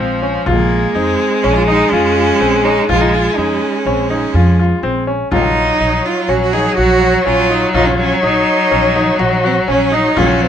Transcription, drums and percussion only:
0, 0, Header, 1, 2, 480
1, 0, Start_track
1, 0, Key_signature, -5, "minor"
1, 0, Tempo, 485044
1, 464, Time_signature, 5, 2, 24, 8
1, 10373, End_track
2, 0, Start_track
2, 0, Title_t, "Frame drum"
2, 219, Note_on_c, 9, 64, 20
2, 317, Note_off_c, 9, 64, 0
2, 456, Note_on_c, 9, 64, 57
2, 555, Note_off_c, 9, 64, 0
2, 697, Note_on_c, 9, 64, 21
2, 796, Note_off_c, 9, 64, 0
2, 1664, Note_on_c, 9, 64, 46
2, 1763, Note_off_c, 9, 64, 0
2, 2862, Note_on_c, 9, 64, 56
2, 2961, Note_off_c, 9, 64, 0
2, 3108, Note_on_c, 9, 64, 21
2, 3207, Note_off_c, 9, 64, 0
2, 3582, Note_on_c, 9, 64, 19
2, 3681, Note_off_c, 9, 64, 0
2, 4058, Note_on_c, 9, 64, 49
2, 4157, Note_off_c, 9, 64, 0
2, 5261, Note_on_c, 9, 64, 62
2, 5360, Note_off_c, 9, 64, 0
2, 5505, Note_on_c, 9, 64, 21
2, 5604, Note_off_c, 9, 64, 0
2, 6464, Note_on_c, 9, 64, 48
2, 6563, Note_off_c, 9, 64, 0
2, 7665, Note_on_c, 9, 64, 58
2, 7764, Note_off_c, 9, 64, 0
2, 7906, Note_on_c, 9, 64, 19
2, 8005, Note_off_c, 9, 64, 0
2, 8863, Note_on_c, 9, 64, 52
2, 8962, Note_off_c, 9, 64, 0
2, 9344, Note_on_c, 9, 64, 20
2, 9443, Note_off_c, 9, 64, 0
2, 10062, Note_on_c, 9, 64, 63
2, 10161, Note_off_c, 9, 64, 0
2, 10307, Note_on_c, 9, 64, 21
2, 10373, Note_off_c, 9, 64, 0
2, 10373, End_track
0, 0, End_of_file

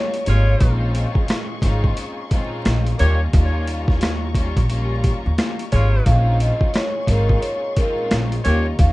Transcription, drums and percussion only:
0, 0, Header, 1, 2, 480
1, 0, Start_track
1, 0, Tempo, 681818
1, 427, Time_signature, 4, 2, 24, 8
1, 6284, End_track
2, 0, Start_track
2, 0, Title_t, "Drums"
2, 96, Note_on_c, 9, 42, 58
2, 167, Note_off_c, 9, 42, 0
2, 186, Note_on_c, 9, 42, 74
2, 256, Note_off_c, 9, 42, 0
2, 426, Note_on_c, 9, 42, 97
2, 428, Note_on_c, 9, 36, 116
2, 496, Note_off_c, 9, 42, 0
2, 498, Note_off_c, 9, 36, 0
2, 667, Note_on_c, 9, 42, 75
2, 737, Note_off_c, 9, 42, 0
2, 811, Note_on_c, 9, 36, 105
2, 882, Note_off_c, 9, 36, 0
2, 903, Note_on_c, 9, 42, 75
2, 915, Note_on_c, 9, 38, 122
2, 923, Note_on_c, 9, 37, 105
2, 973, Note_off_c, 9, 42, 0
2, 986, Note_off_c, 9, 38, 0
2, 993, Note_off_c, 9, 37, 0
2, 1140, Note_on_c, 9, 36, 91
2, 1144, Note_on_c, 9, 42, 90
2, 1210, Note_off_c, 9, 36, 0
2, 1214, Note_off_c, 9, 42, 0
2, 1295, Note_on_c, 9, 36, 90
2, 1365, Note_off_c, 9, 36, 0
2, 1386, Note_on_c, 9, 42, 90
2, 1457, Note_off_c, 9, 42, 0
2, 1626, Note_on_c, 9, 42, 77
2, 1628, Note_on_c, 9, 36, 96
2, 1696, Note_off_c, 9, 42, 0
2, 1699, Note_off_c, 9, 36, 0
2, 1868, Note_on_c, 9, 42, 77
2, 1871, Note_on_c, 9, 38, 122
2, 1879, Note_on_c, 9, 37, 102
2, 1938, Note_off_c, 9, 42, 0
2, 1941, Note_off_c, 9, 38, 0
2, 1949, Note_off_c, 9, 37, 0
2, 2017, Note_on_c, 9, 42, 57
2, 2087, Note_off_c, 9, 42, 0
2, 2107, Note_on_c, 9, 42, 79
2, 2177, Note_off_c, 9, 42, 0
2, 2346, Note_on_c, 9, 42, 98
2, 2348, Note_on_c, 9, 36, 115
2, 2417, Note_off_c, 9, 42, 0
2, 2418, Note_off_c, 9, 36, 0
2, 2587, Note_on_c, 9, 42, 76
2, 2657, Note_off_c, 9, 42, 0
2, 2731, Note_on_c, 9, 36, 105
2, 2746, Note_on_c, 9, 38, 36
2, 2802, Note_off_c, 9, 36, 0
2, 2816, Note_off_c, 9, 38, 0
2, 2823, Note_on_c, 9, 42, 78
2, 2835, Note_on_c, 9, 38, 122
2, 2843, Note_on_c, 9, 37, 103
2, 2894, Note_off_c, 9, 42, 0
2, 2906, Note_off_c, 9, 38, 0
2, 2914, Note_off_c, 9, 37, 0
2, 3060, Note_on_c, 9, 36, 88
2, 3064, Note_on_c, 9, 42, 92
2, 3130, Note_off_c, 9, 36, 0
2, 3135, Note_off_c, 9, 42, 0
2, 3215, Note_on_c, 9, 36, 88
2, 3216, Note_on_c, 9, 42, 55
2, 3285, Note_off_c, 9, 36, 0
2, 3287, Note_off_c, 9, 42, 0
2, 3306, Note_on_c, 9, 42, 92
2, 3376, Note_off_c, 9, 42, 0
2, 3546, Note_on_c, 9, 42, 74
2, 3549, Note_on_c, 9, 36, 99
2, 3617, Note_off_c, 9, 42, 0
2, 3619, Note_off_c, 9, 36, 0
2, 3788, Note_on_c, 9, 42, 79
2, 3791, Note_on_c, 9, 38, 122
2, 3799, Note_on_c, 9, 37, 98
2, 3859, Note_off_c, 9, 42, 0
2, 3861, Note_off_c, 9, 38, 0
2, 3869, Note_off_c, 9, 37, 0
2, 3938, Note_on_c, 9, 42, 56
2, 4008, Note_off_c, 9, 42, 0
2, 4027, Note_on_c, 9, 42, 73
2, 4032, Note_on_c, 9, 36, 91
2, 4097, Note_off_c, 9, 42, 0
2, 4102, Note_off_c, 9, 36, 0
2, 4267, Note_on_c, 9, 42, 96
2, 4268, Note_on_c, 9, 36, 113
2, 4337, Note_off_c, 9, 42, 0
2, 4339, Note_off_c, 9, 36, 0
2, 4508, Note_on_c, 9, 42, 75
2, 4578, Note_off_c, 9, 42, 0
2, 4652, Note_on_c, 9, 36, 102
2, 4722, Note_off_c, 9, 36, 0
2, 4743, Note_on_c, 9, 42, 76
2, 4755, Note_on_c, 9, 38, 119
2, 4763, Note_on_c, 9, 37, 103
2, 4814, Note_off_c, 9, 42, 0
2, 4826, Note_off_c, 9, 38, 0
2, 4834, Note_off_c, 9, 37, 0
2, 4980, Note_on_c, 9, 36, 89
2, 4984, Note_on_c, 9, 42, 92
2, 5050, Note_off_c, 9, 36, 0
2, 5055, Note_off_c, 9, 42, 0
2, 5135, Note_on_c, 9, 36, 90
2, 5205, Note_off_c, 9, 36, 0
2, 5227, Note_on_c, 9, 42, 90
2, 5297, Note_off_c, 9, 42, 0
2, 5467, Note_on_c, 9, 42, 78
2, 5469, Note_on_c, 9, 36, 92
2, 5537, Note_off_c, 9, 42, 0
2, 5539, Note_off_c, 9, 36, 0
2, 5709, Note_on_c, 9, 42, 79
2, 5711, Note_on_c, 9, 38, 120
2, 5719, Note_on_c, 9, 37, 96
2, 5779, Note_off_c, 9, 42, 0
2, 5782, Note_off_c, 9, 38, 0
2, 5789, Note_off_c, 9, 37, 0
2, 5858, Note_on_c, 9, 42, 55
2, 5928, Note_off_c, 9, 42, 0
2, 5947, Note_on_c, 9, 42, 77
2, 6017, Note_off_c, 9, 42, 0
2, 6186, Note_on_c, 9, 42, 100
2, 6188, Note_on_c, 9, 36, 121
2, 6257, Note_off_c, 9, 42, 0
2, 6258, Note_off_c, 9, 36, 0
2, 6284, End_track
0, 0, End_of_file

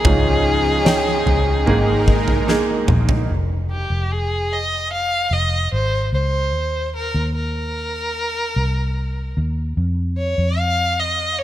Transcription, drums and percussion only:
0, 0, Header, 1, 2, 480
1, 0, Start_track
1, 0, Tempo, 810811
1, 28, Time_signature, 4, 2, 24, 8
1, 6769, End_track
2, 0, Start_track
2, 0, Title_t, "Drums"
2, 28, Note_on_c, 9, 43, 115
2, 31, Note_on_c, 9, 36, 110
2, 88, Note_off_c, 9, 43, 0
2, 90, Note_off_c, 9, 36, 0
2, 511, Note_on_c, 9, 38, 114
2, 570, Note_off_c, 9, 38, 0
2, 751, Note_on_c, 9, 43, 58
2, 810, Note_off_c, 9, 43, 0
2, 991, Note_on_c, 9, 43, 55
2, 1050, Note_off_c, 9, 43, 0
2, 1230, Note_on_c, 9, 36, 84
2, 1289, Note_off_c, 9, 36, 0
2, 1348, Note_on_c, 9, 43, 66
2, 1407, Note_off_c, 9, 43, 0
2, 1470, Note_on_c, 9, 38, 55
2, 1529, Note_off_c, 9, 38, 0
2, 1706, Note_on_c, 9, 45, 94
2, 1765, Note_off_c, 9, 45, 0
2, 1827, Note_on_c, 9, 43, 96
2, 1887, Note_off_c, 9, 43, 0
2, 6769, End_track
0, 0, End_of_file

